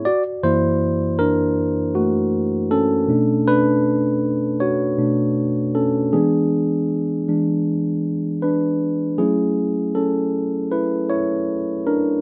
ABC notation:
X:1
M:4/4
L:1/8
Q:"Swing 16ths" 1/4=79
K:F#m
V:1 name="Tine electric piano"
[Fd] [E=c]2 [D^A]2 [=A,F]2 [^C=A]- | [CA] [DB]3 [Fc]3 [CA] | [B,G]6 [DB]2 | [CG]2 [CA]2 [EB] [Ec]2 [D_B] |]
V:2 name="Tine electric piano" clef=bass
z [F,,E,^A,]3 z4 | [B,,A,D]3 z2 [B,,A,D] z2 | [E,G,D]3 [E,G,D] z4 | [F,A,E]3 z4 z |]